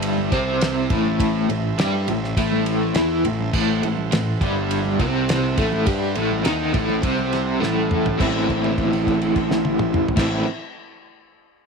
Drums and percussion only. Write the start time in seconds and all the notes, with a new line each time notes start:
0.02 ride
0.18 high conga
0.32 kick, snare, ride
0.61 snare, ride
0.90 kick, ride, low conga
1.06 high conga
1.20 kick, ride
1.50 ride
1.79 snare, ride
2.08 ride, low conga
2.24 snare
2.37 kick, ride
2.52 high conga
2.66 ride
2.95 snare, ride
3.25 ride, low conga
3.39 high conga
3.53 kick, crash
3.83 ride
3.97 high conga
4.12 snare, ride
4.41 kick, ride, low conga
4.71 ride
4.85 high conga
4.99 kick, ride
5.29 snare, ride
5.57 kick, ride, low conga
5.72 high conga
5.86 kick, ride
6.15 ride
6.31 high conga
6.45 snare, ride
6.74 kick, ride, low conga
6.89 high conga
7.03 kick, ride
7.19 high conga
7.33 snare, ride
7.63 snare, high conga
7.77 high conga
7.91 mid tom, low conga
8.05 floor tom, low conga
8.20 kick, crash, high conga
8.49 kick, crash
8.64 crash
8.78 kick, crash
8.93 crash
9.07 kick, crash
9.21 crash
9.36 kick, crash
9.51 snare
9.65 high tom
9.79 mid tom
9.94 mid tom
10.08 floor tom
10.17 kick, snare, crash